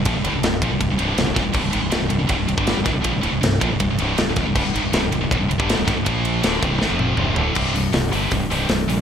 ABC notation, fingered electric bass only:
X:1
M:4/4
L:1/16
Q:1/4=160
K:Cm
V:1 name="Fingered electric bass" clef=bass
B,,, C,,, D,,, C,,, C,,,2 B,,, C,,, C,,, C,,, C,,,2 C,,, C,,, E,,, C,,, | C,,, C,,, A,,, C,,, C,,, C,,, C,,, C,,, E,,, C,,, C,,, G,,,2 C,,, A,,, C,,, | B,,, C,,, D,,, C,,, C,,,2 B,,, C,,, C,,, C,,, C,,,2 C,,, C,,, E,,, C,,, | C,,, C,,, A,,, C,,, C,,, C,,, C,,, C,,, E,,, C,,, C,,, G,,,2 C,,, A,,, C,,, |
B,,,4 D,,,2 C,,,2 A,,, F,,,3 C,,,2 D,,,2 | C,,,4 C,,,2 G,,,2 C,,,2 C,,,2 C,,,2 B,,,2 |]